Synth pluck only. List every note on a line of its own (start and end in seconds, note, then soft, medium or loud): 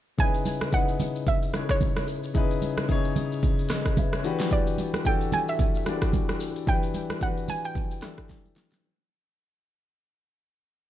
0.20 0.75 G#5 loud
0.74 1.24 F#5 loud
1.28 1.67 E5 loud
1.71 2.06 C#5 medium
4.53 5.07 D5 medium
5.06 5.18 G5 loud
5.33 5.49 G#5 loud
5.49 5.99 E5 medium
6.69 7.24 G5 loud
7.23 7.50 F#5 loud
7.50 7.65 G#5 loud
7.65 8.53 G5 loud